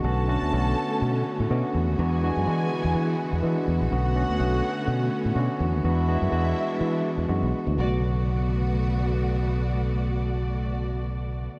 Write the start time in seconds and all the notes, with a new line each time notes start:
0.04 B1 D3 A3 B3 C#4 F#4 A4 A5
0.28 D3 A3 B3 C#4 F#4
0.42 D2
0.52 B1 D3 A3 B3 C#4 F#4
1.02 B2
1.40 A2
1.50 B2 D3 A3 B3 C#4 F#4
1.75 E2
1.88 D#2
1.97 E2 E3 G#3 B3 D4 E4 F#4 G#4 G#5
2.22 E3 G#3 B3 D4 F#4
2.37 F#2
2.46 E3 G#3 B3 D4 F#4
2.84 E2
2.95 E3
3.33 E2
3.42 E3 G#3 B3 D4 E4
3.68 E2
3.81 A#1
3.91 B1 D3 A3 B3 C#4 F#4 F#5
4.15 D3 A3 B3 C#4 F#4
4.29 D2
4.39 B1 D3 A3 B3 C#4 F#4
4.88 B2
5.25 A2
5.35 B2 D3 A3 B3 C#4 F#4
5.60 E2
5.73 D#2
5.84 E2 E3 G#3 B3 D4 E4 F#4 E5
6.07 E3 G#3 B3 D4 F#4
6.22 F#2
6.30 E2 E3 G#3 B3 D4 F#4
6.81 E3
7.18 E2
7.28 F#2 E3 G#3 B3 D4 F#4
7.43 B1
7.67 D2
7.74 B2 D3 A3 B3 F#4
7.78 B1 C#3 A3 F#4 D5